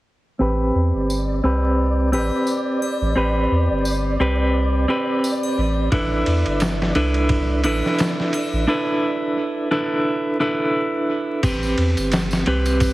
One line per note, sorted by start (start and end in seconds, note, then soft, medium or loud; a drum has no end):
0.39 0.71 A1 medium
0.39 1.40 C4 medium
0.39 1.40 G4 medium
0.39 1.41 B4 medium
0.39 8.68 D5 medium
0.75 0.92 E2 medium
0.94 1.41 G1 medium
1.10 tambourine medium
1.44 2.15 C2 loud
1.44 2.09 C4 medium
1.44 2.09 G4 medium
1.44 2.10 B4 medium
2.12 2.30 A1 medium
2.12 3.12 C4 medium
2.12 3.13 G4 medium
2.12 3.13 B4 medium
2.12 triangle medium
2.47 tambourine medium
2.82 triangle medium
3.01 3.14 A1 medium
3.16 3.47 A1 medium
3.16 4.16 C4 medium
3.16 4.16 G4 medium
3.16 4.17 B4 medium
3.51 3.68 E2 medium
3.70 4.17 G1 medium
3.85 tambourine medium
4.19 4.86 C2 loud
4.19 4.85 C4 medium
4.19 4.85 G4 medium
4.19 4.86 B4 medium
4.88 5.88 C4 medium
4.88 5.89 G4 medium
4.88 5.89 B4 medium
5.24 tambourine medium
5.43 triangle medium
5.58 5.89 A1 medium
5.92 6.23 A1 medium
5.92 6.92 D4 medium
5.92 6.92 E4 medium
5.92 6.93 A4 medium
5.92 6.93 B4 medium
5.92 kick loud
5.92 ride medium
6.26 6.44 E2 medium
6.26 ride medium
6.46 6.93 G1 medium
6.46 ride soft
6.60 snare medium
6.60 ride medium
6.60 tambourine medium
6.82 snare medium
6.95 7.66 C2 loud
6.95 7.61 D4 medium
6.95 7.61 E4 medium
6.95 7.61 A4 medium
6.95 7.61 B4 loud
6.95 ride medium
7.14 ride soft
7.29 kick loud
7.29 ride medium
7.64 7.82 A1 medium
7.64 8.64 D4 medium
7.64 8.64 E4 medium
7.64 8.65 A4 medium
7.64 8.65 B4 medium
7.64 ride medium
7.64 triangle medium
7.86 snare soft
7.98 snare loud
7.98 ride medium
7.98 tambourine medium
8.20 snare soft
8.33 ride medium
8.33 triangle medium
8.53 8.66 A1 medium
8.68 9.68 D4 medium
8.68 9.68 E4 medium
8.68 9.68 A4 medium
8.68 9.69 B4 medium
9.71 10.37 D4 loud
9.71 10.37 E4 medium
9.71 10.37 A4 medium
9.71 10.37 B4 medium
10.40 11.40 D4 medium
10.40 11.40 E4 medium
10.40 11.41 A4 medium
10.40 11.41 B4 medium
11.43 11.74 A1 medium
11.43 12.43 C4 medium
11.43 12.44 G4 medium
11.43 12.44 B4 medium
11.43 kick loud
11.43 crash medium
11.43 ride medium
11.43 tambourine medium
11.63 tambourine soft
11.78 11.95 E2 medium
11.78 ride medium
11.97 12.44 G1 medium
11.97 ride soft
11.97 tambourine medium
12.12 snare loud
12.12 ride medium
12.12 tambourine medium
12.31 snare medium
12.31 tambourine soft
12.46 12.93 C2 loud
12.46 12.93 C4 medium
12.46 12.93 G4 medium
12.46 12.93 B4 loud
12.46 ride medium
12.66 ride soft
12.66 tambourine medium
12.80 kick loud
12.80 ride medium
12.80 tambourine medium